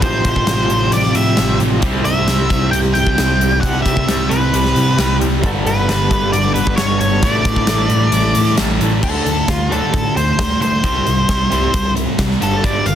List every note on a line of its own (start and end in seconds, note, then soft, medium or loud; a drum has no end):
0.01 0.22 A1 medium
0.01 1.81 F2 medium
0.01 0.47 A2 loud
0.01 1.80 C3 medium
0.01 0.48 F3 loud
0.01 0.28 C4 loud
0.01 0.26 F4 loud
0.01 0.93 C5 medium
0.01 kick loud
0.01 closed hi-hat medium
0.05 0.26 G4 loud
0.25 0.44 A1 medium
0.25 0.49 C4 medium
0.25 0.49 F4 medium
0.25 0.51 G4 medium
0.25 kick medium
0.25 closed hi-hat medium
0.36 kick medium
0.47 0.67 A1 medium
0.47 0.93 A2 medium
0.47 0.94 F3 medium
0.47 0.73 C4 medium
0.47 0.71 F4 loud
0.47 snare loud
0.47 closed hi-hat loud
0.51 0.70 G4 medium
0.69 0.89 A1 medium
0.69 1.38 F4 soft
0.69 1.40 G4 medium
0.69 closed hi-hat medium
0.73 1.39 C4 medium
0.92 1.12 A1 medium
0.92 1.16 D5 medium
0.92 closed hi-hat medium
1.03 snare soft
1.15 1.35 A2 medium
1.15 1.57 E5 medium
1.15 closed hi-hat medium
1.37 1.57 A1 medium
1.37 1.82 F3 medium
1.37 1.63 C4 medium
1.37 1.60 F4 medium
1.37 1.60 G4 medium
1.37 snare loud
1.37 closed hi-hat medium
1.60 1.80 A1 medium
1.60 1.84 C4 medium
1.60 1.82 F4 medium
1.60 1.85 G4 medium
1.60 closed hi-hat medium
1.82 2.02 C2 medium
1.82 2.27 C3 medium
1.82 2.28 G3 medium
1.82 2.08 C4 loud
1.82 2.07 E4 loud
1.82 2.05 G4 loud
1.82 kick loud
1.82 closed hi-hat medium
2.05 2.24 C2 medium
2.05 2.29 C4 medium
2.05 2.30 G4 medium
2.05 2.71 E5 medium
2.05 closed hi-hat medium
2.27 2.47 C2 medium
2.27 3.62 C3 medium
2.27 3.18 G3 medium
2.27 2.52 C4 medium
2.27 2.51 E4 medium
2.27 2.50 G4 medium
2.27 snare loud
2.27 closed hi-hat medium
2.50 2.70 C2 medium
2.50 3.18 C4 soft
2.50 3.19 E4 medium
2.50 kick medium
2.50 closed hi-hat medium
2.71 2.92 C2 medium
2.71 2.78 G5 loud
2.71 closed hi-hat medium
2.94 3.15 C2 medium
2.94 3.60 G5 loud
2.94 closed hi-hat medium
3.07 kick medium
3.18 3.38 C2 medium
3.18 3.63 G3 medium
3.18 3.42 C4 medium
3.18 3.41 E4 medium
3.18 3.40 G4 medium
3.18 snare loud
3.18 closed hi-hat loud
3.40 3.60 C2 medium
3.40 3.63 C4 medium
3.40 3.64 E4 medium
3.40 3.65 G4 medium
3.40 closed hi-hat medium
3.61 3.83 C2 medium
3.61 4.06 C3 loud
3.61 4.08 G3 loud
3.61 3.86 C4 loud
3.61 3.82 F#5 loud
3.61 kick medium
3.61 closed hi-hat medium
3.65 3.85 E4 loud
3.65 3.85 G4 loud
3.82 4.05 C2 medium
3.82 4.09 G4 medium
3.82 4.31 E5 loud
3.82 kick medium
3.82 closed hi-hat medium
3.86 4.08 C4 medium
3.86 4.08 E4 medium
3.97 kick medium
4.07 4.28 C2 medium
4.07 4.53 C3 medium
4.07 4.97 G3 medium
4.07 4.31 C4 medium
4.07 4.30 E4 medium
4.07 4.29 G4 medium
4.07 snare loud
4.07 closed hi-hat loud
4.29 4.50 C2 medium
4.29 4.97 C4 medium
4.29 4.98 E4 medium
4.29 4.99 G4 medium
4.29 5.16 B4 medium
4.29 closed hi-hat medium
4.53 4.73 C2 medium
4.53 closed hi-hat medium
4.65 snare soft
4.76 4.95 C3 medium
4.76 closed hi-hat medium
4.97 5.18 C2 medium
4.97 5.41 G3 medium
4.97 5.21 C4 medium
4.97 5.19 E4 medium
4.97 5.18 G4 medium
4.97 snare loud
4.97 closed hi-hat medium
5.20 5.40 C2 medium
5.20 5.43 C4 medium
5.20 5.42 E4 medium
5.20 5.42 G4 medium
5.20 closed hi-hat medium
5.42 5.63 G1 medium
5.42 7.22 G2 medium
5.42 7.21 D3 medium
5.42 5.86 G3 loud
5.42 5.66 B3 loud
5.42 5.66 D4 medium
5.42 5.64 A4 loud
5.42 kick loud
5.42 closed hi-hat medium
5.65 5.85 G1 medium
5.65 5.88 B3 medium
5.65 5.89 D4 medium
5.65 5.89 A4 medium
5.65 6.30 B4 loud
5.65 closed hi-hat medium
5.87 6.08 G1 medium
5.87 6.33 G3 medium
5.87 6.11 B3 medium
5.87 6.10 D4 loud
5.87 6.09 A4 medium
5.87 snare loud
5.87 closed hi-hat medium
6.10 6.30 G1 medium
6.10 6.77 B3 medium
6.10 6.79 D4 medium
6.10 6.79 A4 medium
6.10 kick medium
6.10 closed hi-hat medium
6.32 6.53 G1 medium
6.32 6.54 D5 medium
6.32 closed hi-hat medium
6.54 6.75 G1 medium
6.54 6.76 B4 medium
6.54 closed hi-hat medium
6.67 kick medium
6.76 6.98 G1 medium
6.76 7.22 G3 medium
6.76 7.01 B3 medium
6.76 7.01 D4 medium
6.76 6.99 A4 medium
6.76 6.98 C#5 loud
6.76 snare loud
6.76 closed hi-hat medium
7.00 7.20 G1 medium
7.00 7.23 B3 medium
7.00 7.24 D4 medium
7.00 7.24 A4 medium
7.00 7.22 C#5 medium
7.00 closed hi-hat medium
7.22 7.42 A1 medium
7.22 7.66 A2 loud
7.22 9.02 E3 medium
7.22 9.02 A3 loud
7.22 7.45 E4 loud
7.22 7.43 A4 loud
7.22 8.55 D5 loud
7.22 kick loud
7.22 closed hi-hat medium
7.45 7.65 A1 medium
7.45 7.68 E4 medium
7.45 kick medium
7.45 closed hi-hat medium
7.56 kick medium
7.67 7.87 A1 medium
7.67 8.13 A2 medium
7.67 8.13 D3 medium
7.67 7.90 A3 loud
7.67 7.89 E4 medium
7.67 7.87 A4 loud
7.67 snare loud
7.67 closed hi-hat loud
7.89 8.10 A1 medium
7.89 8.56 A3 medium
7.89 8.57 E4 medium
7.89 8.58 A4 medium
7.89 closed hi-hat medium
8.12 8.32 A1 medium
8.12 closed hi-hat loud
8.35 8.55 A2 medium
8.35 closed hi-hat medium
8.56 8.78 A1 medium
8.56 9.01 D3 medium
8.56 8.81 A3 medium
8.56 8.79 E4 medium
8.56 8.78 A4 medium
8.56 snare loud
8.56 closed hi-hat loud
8.79 9.00 A1 loud
8.79 9.02 A3 medium
8.79 9.02 E4 medium
8.79 9.01 A4 medium
8.79 closed hi-hat medium
9.02 9.17 D2 medium
9.02 9.24 D3 loud
9.02 9.24 F#3 medium
9.02 9.25 A3 loud
9.02 9.25 D4 medium
9.02 9.47 A4 medium
9.02 kick medium
9.02 crash loud
9.25 9.40 D2 medium
9.25 9.46 D3 medium
9.25 9.46 F#3 medium
9.25 9.46 A3 medium
9.25 closed hi-hat medium
9.47 9.77 D2 medium
9.47 9.68 D3 medium
9.47 9.68 F#3 medium
9.47 9.69 A3 medium
9.47 9.71 F4 medium
9.47 kick loud
9.47 snare loud
9.47 closed hi-hat medium
9.69 9.91 D3 medium
9.69 9.92 F#3 medium
9.69 9.92 A3 loud
9.69 9.93 D4 loud
9.69 10.15 A4 medium
9.69 closed hi-hat medium
9.93 10.08 A2 medium
9.93 10.13 D3 medium
9.93 10.14 F#3 medium
9.93 10.14 A3 medium
9.93 kick loud
9.93 closed hi-hat medium
10.15 10.30 D2 medium
10.15 10.36 D3 medium
10.15 10.36 F#3 medium
10.15 10.37 A3 medium
10.15 10.60 C5 medium
10.15 closed hi-hat medium
10.38 10.53 D2 medium
10.38 10.59 D3 medium
10.38 10.59 F#3 medium
10.38 10.59 A3 medium
10.38 kick loud
10.38 snare loud
10.38 closed hi-hat medium
10.50 snare soft
10.61 10.81 D3 medium
10.61 10.75 D3 loud
10.61 10.81 F#3 medium
10.61 10.81 A3 medium
10.61 11.92 C5 medium
10.61 closed hi-hat medium
10.83 10.98 C2 medium
10.83 11.05 C3 loud
10.83 11.05 G3 medium
10.83 11.05 C4 medium
10.83 kick medium
10.83 closed hi-hat medium
11.06 11.21 C2 medium
11.06 11.26 C3 medium
11.06 11.27 G3 medium
11.06 closed hi-hat medium
11.29 11.43 C2 medium
11.29 11.49 C3 medium
11.29 11.49 G3 medium
11.29 kick loud
11.29 snare loud
11.29 closed hi-hat loud
11.51 11.66 C2 medium
11.51 11.72 C3 medium
11.51 11.72 G3 medium
11.51 11.72 C4 medium
11.51 closed hi-hat medium
11.72 12.03 C2 medium
11.72 11.93 C3 medium
11.72 11.93 G3 medium
11.72 kick loud
11.72 closed hi-hat loud
11.96 12.16 C3 medium
11.96 12.17 G3 medium
11.96 closed hi-hat medium
12.19 12.33 C2 medium
12.19 12.39 C3 medium
12.19 12.39 G3 medium
12.19 kick medium
12.19 snare loud
12.19 closed hi-hat medium
12.31 snare soft
12.41 12.56 G1 medium
12.41 12.62 G2 medium
12.41 12.62 D3 medium
12.41 12.63 G3 medium
12.41 12.64 A4 loud
12.41 closed hi-hat medium
12.63 12.78 G1 medium
12.63 12.85 G2 medium
12.63 12.85 D3 loud
12.63 12.85 G3 loud
12.63 12.86 D5 medium
12.63 kick medium
12.63 closed hi-hat medium
12.86 12.95 G1 medium
12.86 12.95 G2 medium
12.86 12.95 D3 medium
12.86 12.95 F5 medium
12.86 closed hi-hat medium